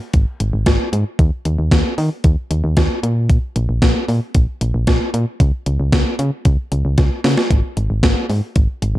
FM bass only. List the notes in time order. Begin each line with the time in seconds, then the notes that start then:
0.14 G#1
0.40 G#1
0.53 G#1
0.66 G#1
0.93 G#2
1.19 D#2
1.45 D#2
1.58 D#2
1.71 D#2
1.98 D#3
2.24 D#2
2.51 D#2
2.64 D#2
2.77 D#2
3.03 A#2
3.56 A#1
3.69 A#1
3.82 A#1
4.08 A#2
4.35 A#1
4.61 A#1
4.74 A#1
4.87 A#1
5.14 A#2
5.40 C#2
5.66 C#2
5.80 C#2
5.92 C#2
6.19 C#3
6.45 C#2
6.72 C#2
6.85 C#2
6.98 C#2
7.24 C#3
7.51 G#1
7.77 G#1
7.90 G#1
8.03 G#1
8.30 G#2
8.56 G#1
8.82 G#1
8.95 G#1